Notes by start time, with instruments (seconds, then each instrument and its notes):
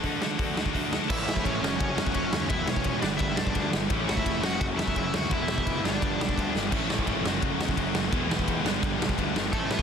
0.04 distorted electric guitar D3 A3 D4 F#4 A4, picked electric bass D3, kick, open hi-hat
0.21 distorted electric guitar D3 A3 D4 F#4 A4, snare
0.38 picked electric bass D2, distorted electric guitar D3 A3 D4 F#4 A4, kick, open hi-hat
0.56 distorted electric guitar D3 A3 D4 F#4 A4, snare
0.66 kick
0.73 picked electric bass D2, distorted electric guitar D3 A3 D4 F#4 A4, kick, open hi-hat
0.91 distorted electric guitar D3 A3 D4 F#4 A4, snare
1.08 picked electric bass A1, distorted electric guitar A2 E3 A3 C#4 E4, overdriven electric guitar E4 E5, kick, crash
1.26 picked electric bass A1, distorted electric guitar A2 E3 A3, snare
1.36 kick
1.44 picked electric bass A1, distorted electric guitar A2 E3 A3, overdriven electric guitar C#4 C#5, kick, ride
1.61 picked electric bass F#1, distorted electric guitar F#2 C#3 F#3 A3 C#4 F#4, snare
1.78 picked electric bass F#1, distorted electric guitar F#2 C#3 F#3, overdriven electric guitar C#4 C#5, kick, ride
1.96 picked electric bass E2, distorted electric guitar F#2 C#3 F#3, snare
2.07 kick
2.14 picked electric bass F#1, distorted electric guitar F#2 C#3 F#3, overdriven electric guitar C#4 C#5, kick, ride
2.32 picked electric bass D#2, distorted electric guitar F#2 C#3 F#3, snare
2.49 picked electric bass E1, distorted electric guitar E2 B2 E3 G#3 B3 E4, overdriven electric guitar E4 E5, kick, ride
2.68 picked electric bass E1, distorted electric guitar E2 B2 E3, overdriven electric guitar C#4 C#5, snare
2.76 kick
2.84 picked electric bass E1, distorted electric guitar E2 B2 E3, kick, ride
3.02 picked electric bass G1, distorted electric guitar G2 D3 G3 B3 D4, overdriven electric guitar D4 D5, snare
3.18 picked electric bass G1, distorted electric guitar G2 D3 G3, overdriven electric guitar E4 E5, kick, ride
3.36 picked electric bass B1, distorted electric guitar G2 D3 G3, overdriven electric guitar D4 D5, snare
3.47 kick
3.54 picked electric bass D2, distorted electric guitar G2 D3 G3, kick, ride
3.71 picked electric bass G1, distorted electric guitar G2 D3 G3, snare
3.88 picked electric bass A1, distorted electric guitar A2 E3 A3 C#4 E4, kick, ride
4.07 picked electric bass A1, distorted electric guitar A2 E3 A3, overdriven electric guitar F#4 F#5, snare
4.17 overdriven electric guitar E4 E5, kick
4.24 picked electric bass F1, distorted electric guitar A2 E3 A3, kick, ride
4.41 picked electric bass F#1, distorted electric guitar F#2 C#3 F#3 A3 C#4 F#4, overdriven electric guitar F#4 F#5, snare
4.60 picked electric bass F#1, distorted electric guitar F#2 C#3 F#3, overdriven electric guitar F#4 F#5, kick, ride
4.77 picked electric bass E2, distorted electric guitar F#2 C#3 F#3, overdriven electric guitar E4 E5, snare
4.88 kick
4.96 picked electric bass F#1, distorted electric guitar F#2 C#3 F#3, overdriven electric guitar E4 E5, kick, ride
5.13 picked electric bass D2, distorted electric guitar F#2 C#3 F#3, overdriven electric guitar F#4 F#5, snare
5.30 picked electric bass E1, distorted electric guitar E2 B2 E3 G#3 B3 E4, overdriven electric guitar E4, kick, ride
5.34 overdriven electric guitar E5
5.48 picked electric bass E1, distorted electric guitar E2 B2 E3, snare
5.58 kick
5.66 picked electric bass F#1, distorted electric guitar E2 B2 E3, kick, ride
5.82 picked electric bass G1, distorted electric guitar G2 D3 G3 B3 D4, overdriven electric guitar D4, snare
5.88 overdriven electric guitar D5
6.02 picked electric bass G1, distorted electric guitar G2 D3 G3, kick, ride
6.19 picked electric bass B1, distorted electric guitar G2 D3 G3, snare
6.29 kick
6.36 picked electric bass D2, distorted electric guitar G2 D3 G3, kick, ride
6.54 picked electric bass G1, distorted electric guitar G2 D3 G3, snare
6.70 picked electric bass A1, distorted electric guitar A2 E3 A3 C#4 E4, kick, crash
6.89 picked electric bass A1, distorted electric guitar A2 E3 A3, snare
6.99 kick
7.05 picked electric bass G#1, distorted electric guitar A2 E3 A3, kick, ride
7.23 picked electric bass F#1, distorted electric guitar F#2 C#3 F#3 A3 C#4 F#4, snare
7.41 picked electric bass F#1, distorted electric guitar F#2 C#3 F#3, kick, ride
7.59 picked electric bass E2, distorted electric guitar F#2 C#3 F#3, snare
7.69 kick
7.77 picked electric bass F#1, distorted electric guitar F#2 C#3 F#3, kick, ride
7.94 picked electric bass F#1, distorted electric guitar F#2 C#3 F#3, snare
8.11 picked electric bass E1, distorted electric guitar E2 B2 E3 G#3 B3 E4, kick, ride
8.28 picked electric bass E1, distorted electric guitar E2 B2 E3, snare
8.39 kick
8.45 picked electric bass E1, distorted electric guitar E2 B2 E3, kick, ride
8.63 picked electric bass G1, distorted electric guitar G2 D3 G3 B3 D4, snare
8.81 picked electric bass G1, distorted electric guitar G2 D3 G3, kick, ride
8.99 picked electric bass B1, distorted electric guitar G2 D3 G3, snare
9.09 kick
9.16 picked electric bass D2, distorted electric guitar G2 D3 G3, kick, ride
9.34 picked electric bass G1, distorted electric guitar G2 D3 G3, snare
9.51 picked electric bass A1, distorted electric guitar A2 E3 A3 C#4 E4, overdriven electric guitar A3 A4, kick, ride
9.68 picked electric bass A1, distorted electric guitar A2 E3 A3, overdriven electric guitar B3 B4, snare
9.79 kick